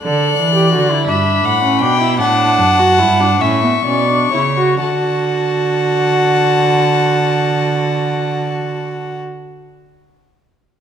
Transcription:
<<
  \new Staff \with { instrumentName = "Violin" } { \time 6/8 \key d \major \tempo 4. = 40 fis'''4. b''4. | a''4. cis'''4. | a''2.~ | a''2. | }
  \new Staff \with { instrumentName = "Violin" } { \time 6/8 \key d \major d''4. e''8 fis''8 g''8 | fis''4. e''8 d''8 cis''8 | fis''2.~ | fis''2. | }
  \new Staff \with { instrumentName = "Viola" } { \time 6/8 \key d \major a'8. g'16 fis'16 e'16 d'8. cis'16 d'16 e'16 | d'8. fis'16 e'16 d'16 cis'16 b16 cis'16 d'16 e'16 fis'16 | fis'2.~ | fis'2. | }
  \new Staff \with { instrumentName = "Cello" } { \clef bass \time 6/8 \key d \major d8 e8 d8 g,8 a,8 b,8 | a,8 fis,8 g,8 a,8 b,8 cis8 | d2.~ | d2. | }
>>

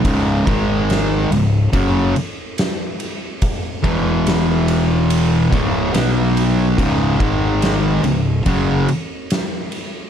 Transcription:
<<
  \new Staff \with { instrumentName = "Distorted electric guitar" } { \clef bass \time 4/4 \key cis \minor \tempo 4 = 71 <cis, gis, cis>8 <gis, dis gis>4 <cis, gis,>8 <fis, cis fis>8 r4. | r8 <e, b, e>2 <cis, gis, cis>8 <b, fis b>4 | <cis, gis, cis>8 <gis, dis gis>4 <cis, gis,>8 <fis, cis fis>8 r4. | }
  \new Staff \with { instrumentName = "Fingered electric bass" } { \clef bass \time 4/4 \key cis \minor cis,,8 gis,,4 cis,,8 fis,,8 r4. | r8 e,,2 cis,,8 b,,4 | cis,,8 gis,,4 cis,,8 fis,,8 r4. | }
  \new DrumStaff \with { instrumentName = "Drums" } \drummode { \time 4/4 <bd cymr>8 <bd cymr>8 <cymr sn>8 cymr8 <bd cymr>8 cymr8 <cymr sn>8 cymr8 | <bd cymr>8 <bd cymr>8 <cymr sn>8 cymr8 cymr8 <bd cymr>8 <cymr sn>8 cymr8 | <bd cymr>8 <bd cymr>8 <cymr sn>8 cymr8 <bd cymr>8 cymr8 <cymr sn>8 cymr8 | }
>>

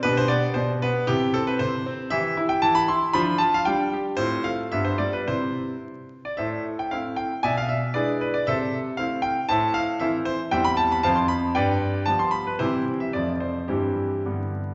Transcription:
<<
  \new Staff \with { instrumentName = "Grand piano" } { \time 2/4 \key c \major \tempo 4 = 116 << { b'16 c''16 d''8 c''8 b'8 | g'8 a'16 b'16 c''4 | e''8. g''16 a''16 b''16 c'''8 | b''8 a''16 f''16 g''4 |
c''8 f''8 e''16 c''16 d''16 b'16 | c''4 r8. d''16 | \key a \minor <a' c'' e''>8. g''16 f''8 g''8 | <d'' e'' gis''>16 f''16 e''8 <gis' b' d''>8 b'16 d''16 |
<a' c'' e''>4 f''8 g''8 | <c'' e'' a''>8 f''8 <a' c'' e''>8 c''16 r16 | \key c \major <c'' e'' g''>16 b''16 a''16 b''16 <c'' f'' a''>16 c'''16 b''8 | <b' d'' g''>4 a''16 c'''16 b''16 b'16 |
<e' g' c''>8. e''16 d''8 c''8 | <c' e' g'>4. r8 | } \\ { <d' g'>2 | e'2 | <e' g'>2 | <d' f'>4 d'4 |
<c' f'>4 <b f'>4 | r2 | r2 | r2 |
r2 | r2 | r2 | r2 |
r2 | r2 | } >> }
  \new Staff \with { instrumentName = "Grand piano" } { \clef bass \time 2/4 \key c \major b,8 b8 b,8 b8 | c8 c'8 c8 c'8 | e8 e'8 e8 e'8 | f8 f'8 g8 g'8 |
a,8 a8 g,8 g8 | <c c' e'>4 r4 | \key a \minor a,4 <a c' e'>4 | b,4 <gis d' e'>4 |
c4 <a c' e'>4 | a,4 <e c' e'>4 | \key c \major <e, g c' e'>4 <f, f c'>4 | g,4 <f g b>4 |
<c e g c'>4 <f, f a c'>4 | <g, e g>4 <g, d g b>4 | }
>>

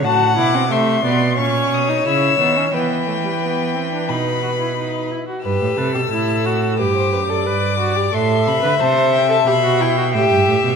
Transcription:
<<
  \new Staff \with { instrumentName = "Violin" } { \time 4/4 \key e \minor \tempo 4 = 89 a''8 d'''8 c'''4 cis'''8 dis'''8 e'''4 | g''2 b''4. r8 | e'''2 d'''2 | c'''8 b''8 a''8 g''16 a''16 b''8 g''8 e''4 | }
  \new Staff \with { instrumentName = "Violin" } { \time 4/4 \key e \minor fis''4 e''8 d''8 cis''2 | b'2 b'4. r8 | b'8 a'4. b'16 c''16 b'16 d''4~ d''16 | e''2. g''4 | }
  \new Staff \with { instrumentName = "Viola" } { \time 4/4 \key e \minor fis'8 e'16 c'16 a8 b8 cis'8. dis'16 e'8 b16 cis'16 | b8 a16 g16 b8 c'16 d'16 dis'8 fis'16 e'16 dis'8 e'16 fis'16 | g'8 b'16 g'16 e'8 fis'8 g'8. a'16 b'8 fis'16 g'16 | a'8. b'16 c''8. a'16 g'16 fis'16 e'16 fis'16 g'4 | }
  \new Staff \with { instrumentName = "Cello" } { \clef bass \time 4/4 \key e \minor a,8 b,8 c8 b,8 ais,8 b,8 cis8 dis8 | e2 b,4. r8 | g,16 a,16 c16 b,16 a,4 g,8 fis,8 g,4 | a,8 c16 d16 c4 b,4 a,16 g,16 a,16 b,16 | }
>>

